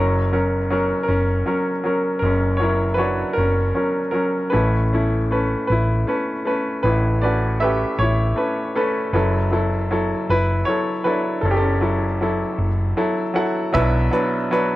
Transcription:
Already playing: fingered electric bass F#1, upright piano F#1 F#2 F#3 C#4 A#4
0.33 upright piano F#3 C#4 A#4
0.70 upright piano F#3 C#4 A#4
1.03 upright piano A#4
1.08 fingered electric bass F#1, upright piano C#4
1.46 upright piano F#3 C#4 A#4
1.84 upright piano F#3 C#4 A#4
2.19 fingered electric bass F#1, upright piano F#2 A#4
2.23 upright piano F#1 C#4
2.57 upright piano F#3 C#4 C#5
2.61 upright piano E4 A#4
2.94 upright piano F#3 B4
2.98 upright piano D4 F#4 C#5
3.34 fingered electric bass F#1, upright piano A#4
3.38 upright piano C#4
3.75 upright piano F#3 C#4 A#4
4.11 upright piano F#3 C#4 A#4
4.50 upright piano A1 A2 A3 C#4 B4
4.54 fingered electric bass A1, upright piano E4
4.93 upright piano A3 C#4 E4
5.31 upright piano A3 C#4 B4
5.67 fingered electric bass A1, upright piano B4
5.72 upright piano E4
6.07 upright piano A3 C#4 B4
6.45 upright piano A3 C#4 B4
6.83 fingered electric bass A1, upright piano A1 A2 B4
6.88 upright piano E4
7.22 upright piano A3 C#4 F#4 B4 D5
7.60 upright piano A3 C#4 B4 E5
7.64 upright piano G4
7.99 fingered electric bass A1, upright piano E4 C#5
8.36 upright piano A3 C#4 B4
8.76 upright piano A3 C#4 A4 B4
9.13 fingered electric bass F#1, upright piano F#1 F#2 F#3 E4 A4 B4
9.51 upright piano F#3 E4 A4
9.91 upright piano F#3 E4 A4
10.29 fingered electric bass F#1, upright piano E4 B4
10.65 upright piano F#3 E4 C#5
10.69 upright piano A4
11.04 upright piano F#3 E4 A4 B4
11.08 upright piano D4
11.41 fingered electric bass F#1, upright piano F#1 F#2 A4
11.45 upright piano C#4
11.51 upright piano G4
11.57 upright piano A4
11.62 upright piano C#4
11.81 upright piano F#3 E4 A4
12.21 upright piano F#3 E4 A4
12.58 fingered electric bass F#1
12.97 upright piano F#3 E4 A4
13.34 upright piano F#3 E4 A4 F#5
13.38 upright piano F#4
13.73 upright piano B1 B2 F#3 D4 E4 B4 E5, fingered electric bass B1, kick, closed hi-hat
14.11 upright piano F#3 D4 B4, closed hi-hat
14.51 upright piano F#3 D4 B4, closed hi-hat

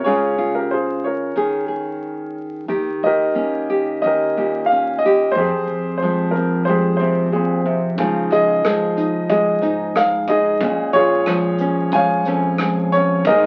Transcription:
0.04 nylon-string guitar C#3 G#3 C#4 F4, grand piano G#4 C#5
0.38 nylon-string guitar F4
0.55 grand piano G4 A#4
0.71 grand piano G#4 C5
1.04 grand piano A#4 C#5
1.36 nylon-string guitar D#3 C#4 G#4
1.68 nylon-string guitar G#4
2.68 upright bass D#2, nylon-string guitar D#3 G4
3.03 upright bass D#2, grand piano G4 A#4 D#5
3.35 nylon-string guitar A#3 C#4
3.70 nylon-string guitar G4
4.02 upright bass D#2, nylon-string guitar C#4, grand piano G4 D#5
4.07 grand piano A#4
4.37 nylon-string guitar A#2 G4
4.66 grand piano F5
4.72 nylon-string guitar C#4
4.99 grand piano D#5
5.06 nylon-string guitar G4
5.32 upright bass F2, grand piano C5
5.37 nylon-string guitar F2 C4, grand piano G4 G#4
5.67 upright bass F2
5.98 grand piano C5
6.02 nylon-string guitar F3 G#3
6.31 grand piano A#4
6.36 nylon-string guitar C4
6.65 upright bass F2, nylon-string guitar G#3, grand piano C5
6.69 grand piano G4 G#4
6.97 nylon-string guitar C3 C4, grand piano C5
7.32 nylon-string guitar A#2, grand piano C4 G#4
7.66 nylon-string guitar C3
7.98 upright bass C#2, nylon-string guitar C#3 F3 G#3 D#4 F4, kick, closed hi-hat
8.31 upright bass C#2, grand piano G#4 D#5, closed hi-hat
8.64 nylon-string guitar F3 G#3, cross-stick, closed hi-hat
8.97 nylon-string guitar D#4, closed hi-hat
9.29 upright bass C#2, nylon-string guitar G#3, grand piano G#4 D#5, kick, closed hi-hat
9.62 nylon-string guitar G#2 D#4, closed hi-hat
9.95 nylon-string guitar G#3, grand piano F5, cross-stick, closed hi-hat
10.28 nylon-string guitar D#4, grand piano G#4 D#5, kick, closed hi-hat
10.60 upright bass A#1, nylon-string guitar A#2 C#4, kick, closed hi-hat
10.93 upright bass A#1, grand piano F4 G#4 C#5, closed hi-hat
11.26 nylon-string guitar F3 G#3, cross-stick, closed hi-hat
11.58 nylon-string guitar C#4, closed hi-hat
11.91 upright bass A#1, nylon-string guitar G#3, grand piano C#5 F5 G#5, kick, closed hi-hat
12.25 nylon-string guitar F2 C#4, closed hi-hat
12.58 nylon-string guitar G#3, cross-stick, closed hi-hat
12.92 grand piano C#5, closed hi-hat
12.96 nylon-string guitar C#4
13.24 upright bass G#1, nylon-string guitar G#2, string section A#2 G#3 D#4, grand piano A#4 D#5, kick, closed hi-hat
13.28 nylon-string guitar D#3 A#3 D#4 G#4

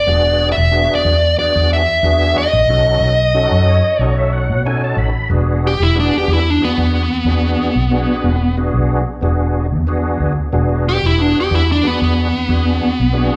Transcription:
Already playing: lead electric guitar D5
0.06 fingered electric bass E1, tonewheel organ B3 D4 F#4 G#4
0.52 lead electric guitar E5
0.58 fingered electric bass E1
0.71 tonewheel organ B3 D4 F#4 G#4
0.95 lead electric guitar D5
1.05 fingered electric bass E2
1.38 tonewheel organ B3 D4 F#4 G#4, lead electric guitar D5
1.56 fingered electric bass E2
1.73 lead electric guitar E5
2.03 fingered electric bass E2, tonewheel organ B3 D4 F#4 G#4
2.38 lead electric guitar D#5
2.53 fingered electric bass A1
2.68 fingered electric bass B1, tonewheel organ C#4 D#4 F#4 A4
3.01 fingered electric bass B1
3.34 tonewheel organ C#4 D#4 F#4 A4
3.51 fingered electric bass F#2
3.68 tonewheel organ C#5
3.99 fingered electric bass B1, tonewheel organ C#4 D#4 F#4 A4 D#5, lead electric guitar C#5
4.18 tonewheel organ E5
4.33 tonewheel organ F#5
4.50 fingered electric bass B2
4.65 tonewheel organ C#4 D#4 F#4 A4 G#5
4.84 tonewheel organ A5
4.97 fingered electric bass A1, tonewheel organ B5
5.30 fingered electric bass E1, tonewheel organ B3 D4 F#4 G#4
5.67 lead electric guitar G4
5.80 fingered electric bass E1, lead electric guitar E4
5.95 tonewheel organ B3 D4 F#4 G#4
6.00 lead electric guitar D4
6.18 lead electric guitar G4
6.28 fingered electric bass E2
6.33 lead electric guitar E4
6.50 lead electric guitar D4
6.60 tonewheel organ B3 D4 F#4 G#4
6.64 lead electric guitar B3
6.78 fingered electric bass E2
7.25 fingered electric bass E2, tonewheel organ B3 D4 F#4 G#4
7.76 fingered electric bass B1
7.91 tonewheel organ B3 D4 F#4 G#4
8.24 fingered electric bass E1
8.57 tonewheel organ B3 D4 F#4 G#4
8.74 fingered electric bass B1
9.21 fingered electric bass E1, tonewheel organ B3 D4 F#4 G#4
9.72 fingered electric bass E2
9.87 tonewheel organ B3 D4 F#4 G#4
10.20 fingered electric bass D2
10.53 fingered electric bass E1, tonewheel organ B3 D4 F#4 G#4
10.89 lead electric guitar G4
11.03 fingered electric bass E1, lead electric guitar E4
11.18 tonewheel organ B3 D4 F#4 G#4, lead electric guitar D4
11.40 lead electric guitar G4
11.51 fingered electric bass E2, lead electric guitar E4
11.72 lead electric guitar D4
11.83 tonewheel organ B3 D4 F#4 G#4, lead electric guitar B3
12.02 fingered electric bass E2
12.48 fingered electric bass E2, tonewheel organ B3 D4 F#4 G#4
13.00 fingered electric bass B1
13.13 tonewheel organ B3 D4 F#4 G#4

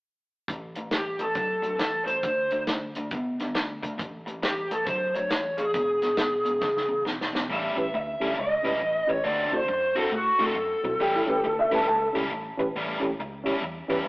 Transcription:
0.48 overdriven electric guitar A2 E3, kick, closed hi-hat
0.75 overdriven electric guitar A2 E3, closed hi-hat
0.91 overdriven electric guitar A2 E3, lead electric guitar G4, snare, closed hi-hat
1.19 overdriven electric guitar A2 E3, lead electric guitar A4, closed hi-hat
1.35 overdriven electric guitar A2 F#3, kick, closed hi-hat
1.62 overdriven electric guitar A2 F#3, closed hi-hat
1.77 overdriven electric guitar A2 E3, lead electric guitar A4, snare, closed hi-hat
2.05 overdriven electric guitar A2 E3, lead electric guitar C5, closed hi-hat
2.23 overdriven electric guitar D3 A3, kick, closed hi-hat
2.50 overdriven electric guitar D3 A3, closed hi-hat
2.67 overdriven electric guitar D3 A3, snare, closed hi-hat
2.95 overdriven electric guitar D3 A3, closed hi-hat
3.11 overdriven electric guitar D3 B3, kick, closed hi-hat
3.39 overdriven electric guitar D3 B3, snare, closed hi-hat
3.55 overdriven electric guitar D3 A3, snare, closed hi-hat
3.83 overdriven electric guitar D3 A3, kick, closed hi-hat
3.98 overdriven electric guitar A2 E3, kick, closed hi-hat
4.26 overdriven electric guitar A2 E3, closed hi-hat
4.43 overdriven electric guitar A2 E3, lead electric guitar G4, snare, closed hi-hat
4.71 overdriven electric guitar A2 E3, lead electric guitar A4, closed hi-hat
4.86 overdriven electric guitar A2 F#3, lead electric guitar C5, kick, closed hi-hat
5.15 overdriven electric guitar A2 F#3, lead electric guitar C#5, closed hi-hat
5.30 overdriven electric guitar A2 E3, lead electric guitar C#5, snare, closed hi-hat
5.57 overdriven electric guitar A2 E3, lead electric guitar G#4, closed hi-hat
5.74 overdriven electric guitar E2 B2, kick, closed hi-hat
6.02 overdriven electric guitar E2 B2, snare, closed hi-hat
6.17 overdriven electric guitar E2 B2, snare, closed hi-hat
6.45 overdriven electric guitar E2 B2, closed hi-hat
6.61 overdriven electric guitar E2 C#3, kick, snare
6.77 snare
6.89 overdriven electric guitar E2 C#3
7.05 overdriven electric guitar E2 B2, snare
7.21 snare
7.33 overdriven electric guitar E2 B2, snare
7.49 fingered electric bass A1, overdriven electric guitar A2 G3 C#4 E4
7.54 lead electric guitar E5
7.76 fingered electric bass A1, reed electric piano C#4 E4 G4 B4, muted overdriven electric guitar stroke
7.93 fingered electric bass D2, lead electric guitar E5, muted overdriven electric guitar stroke
8.20 fingered electric bass D2, overdriven electric guitar A2 G3 C#4 E4, reed electric piano C#4 E4 G4 A4
8.36 fingered electric bass C#2, lead electric guitar D#5, muted overdriven electric guitar stroke
8.63 fingered electric bass C#2, overdriven electric guitar A2 G3 C#4 E4, reed electric piano C#4 E4 G4 B4
8.81 fingered electric bass A1, muted overdriven electric guitar stroke
9.07 fingered electric bass A1, reed electric piano C#4 E4 G4 B4, lead electric guitar C#5, muted overdriven electric guitar stroke
9.24 fingered electric bass D2, overdriven electric guitar D3 A3 C4 F#4, lead electric guitar D5
9.51 fingered electric bass D2, reed electric piano C4 E4 F#4 A4, lead electric guitar C5, muted overdriven electric guitar stroke
9.68 fingered electric bass F#2, muted overdriven electric guitar stroke
9.95 overdriven electric guitar D3 A3 C4 F#4, reed electric piano C4 E4 F#4 A4, lead electric guitar A4
10.12 fingered electric bass A2, lead electric guitar F#4, muted overdriven electric guitar stroke
10.38 fingered electric bass A2, overdriven electric guitar D3 A3 C4 F#4, reed electric piano C4 E4 F#4 A4
10.42 lead electric guitar A4
10.55 fingered electric bass F#2, muted overdriven electric guitar stroke
10.83 fingered electric bass B1, reed electric piano C4 E4 F#4 C5, muted overdriven electric guitar stroke
11.00 fingered electric bass A1, overdriven electric guitar A2 G3 C#4 E4, upright piano G4
11.15 upright piano E4
11.27 fingered electric bass A1, reed electric piano C#4 E4 G4 B4, upright piano G4, muted overdriven electric guitar stroke
11.43 fingered electric bass D2, upright piano A4, muted overdriven electric guitar stroke
11.59 upright piano E5
11.71 fingered electric bass D2, overdriven electric guitar A2 G3 C#4 E4, reed electric piano C#4 E4 G4 B4, upright piano A5
11.88 fingered electric bass C#2, upright piano A5, muted overdriven electric guitar stroke
12.13 fingered electric bass C#2, overdriven electric guitar A2 G3 C#4 E4, reed electric piano C#4 E4 G4 A4
12.31 fingered electric bass A1, muted overdriven electric guitar stroke
12.57 fingered electric bass A1, reed electric piano C#4 E4 G4 B4, muted overdriven electric guitar stroke
12.75 fingered electric bass A1, overdriven electric guitar A2 G3 C#4 E4
13.00 fingered electric bass A1, reed electric piano C#4 E4 G4 A4
13.04 muted overdriven electric guitar stroke
13.19 fingered electric bass C#2, muted overdriven electric guitar stroke
13.44 overdriven electric guitar A2 G3 C#4 E4, reed electric piano C#4 E4 G4 C#5
13.62 fingered electric bass E2, muted overdriven electric guitar stroke
13.88 fingered electric bass E2, overdriven electric guitar A2 G3 C#4 E4, reed electric piano C#4 E4 G4 B4
14.05 muted overdriven electric guitar stroke

